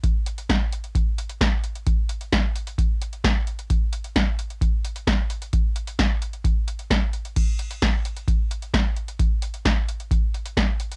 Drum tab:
CC |----------------|----------------|----------------|----------------|
HH |x-xxx-xxx-xxx-xx|x-xxx-xxx-xxx-xx|x-xxx-xxx-xxx-xx|x-xxx-xxx-xxx-xx|
SD |----o-------o---|----o-------o---|----o-------o---|----o-------o---|
BD |o---o---o---o---|o---o---o---o---|o---o---o---o---|o---o---o---o---|

CC |x---------------|----------------|
HH |x-xxx-xxx-xxx-xx|x-xxx-xxx-xxx-xx|
SD |----o-------o---|----o-------o---|
BD |o---o---o---o---|o---o---o---o---|